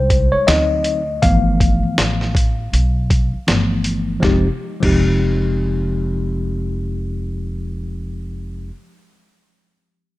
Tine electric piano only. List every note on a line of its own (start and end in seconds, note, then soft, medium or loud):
0.00 0.43 G3 medium
0.00 0.43 G#3 medium
0.00 0.44 D#4 medium
0.00 0.34 C5 medium
0.32 0.46 C#5 medium
0.47 1.00 F#3 medium
0.47 1.01 C4 soft
0.47 1.01 D#4 medium
0.47 1.25 D#5 medium
1.22 2.32 E3 medium
1.22 2.31 F3 medium
1.22 2.31 A3 medium
1.22 2.32 B3 medium
1.22 3.81 F5 medium
3.47 4.19 E3 medium
3.47 4.19 F3 soft
3.47 4.19 A3 soft
3.47 4.19 B3 soft
4.20 4.45 F3 medium
4.20 4.46 G#3 medium
4.20 4.46 C4 medium
4.20 4.47 D#4 medium
4.25 4.47 G4 medium
4.80 8.67 F3 medium
4.80 8.68 G#3 medium
4.80 8.69 C4 medium
4.80 8.69 D#4 medium
4.85 8.70 G4 medium